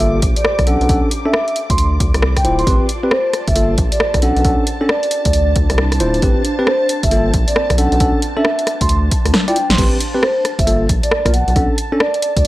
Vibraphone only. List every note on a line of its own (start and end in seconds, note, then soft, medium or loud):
0.37 0.42 D5 medium
0.45 0.54 D5 medium
0.67 0.76 F#5 medium
0.81 0.86 F#5 medium
1.25 1.56 E5 medium
1.70 1.85 C6 medium
2.37 2.51 G5 medium
2.59 2.73 C6 medium
3.11 3.29 C5 medium
3.48 3.61 E5 medium
3.92 3.97 D5 medium
4.00 4.09 D5 medium
4.23 4.32 F#5 medium
4.37 4.42 F#5 medium
4.89 4.98 D5 medium
5.03 5.09 D5 medium
5.25 5.31 D5 loud
5.34 5.43 D5 medium
6.67 6.85 C5 medium
7.03 7.17 E5 loud
7.48 7.53 D5 medium
7.56 7.65 D5 medium
7.78 7.87 F#5 loud
7.92 7.97 F#5 medium
8.37 8.67 E5 loud
8.81 8.96 C6 loud
9.48 9.62 G5 medium
9.70 9.78 C6 medium
10.22 10.40 C5 medium
10.59 10.73 E5 loud
11.03 11.08 D5 medium
11.11 11.20 D5 medium
11.33 11.42 F#5 medium
11.48 11.53 F#5 medium
12.00 12.09 D5 medium
12.14 12.20 D5 medium
12.36 12.42 D5 medium